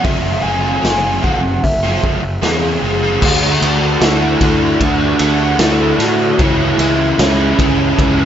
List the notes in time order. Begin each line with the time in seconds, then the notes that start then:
0.03 F#1 F#2 C#3 F#3 A3 C#4 F#4 E5, kick, open hi-hat
0.42 F#1 F#3 A3 C#4 F#4 G#5
0.62 F#3 A3 C#4 F#4
0.81 F#1 F#2 C#3 F#3 A3 C#4 F#4, open hi-hat
0.85 snare
1.21 F#1 F#3 A3 C#4 F#4 F#5, kick
1.43 muted overdriven electric guitar stroke
1.63 F#1 E5, kick, open hi-hat
1.84 F#3 A3 C#4 F#4
2.03 F#1, kick
2.23 muted overdriven electric guitar stroke
2.42 E2 F#2 C#3 F#3 A3 C#4 F#4 G#4, snare, open hi-hat
2.82 F#1 F#3 A3 C#4 F#4
3.02 F#3 A3 C#4 F#4
3.22 D2 D3 A3 D4 F#4, kick, crash
3.62 D2 A3 D4 F#4, ride
4.01 D2 D3 A3 D4 E4 F#4, snare, ride
4.41 D2 A3 D4 F#4, kick, ride
4.80 D2 D4, kick, ride
5.19 D2 A3 D4 F#4, ride
5.59 D2 D3 A3 D4 E4 F#4, snare, ride
5.99 A2, snare, ride
6.03 F#4
6.39 C#2 C#3 E3 G#3 C#4 E4, kick, ride
6.79 C#2 G#3 C#4 E4, ride
7.18 C#2 E3 G#3 C#4 E4, snare, ride
7.59 C#2 G#3 C#4 E4, kick, ride
7.98 C#2 C#4, kick, ride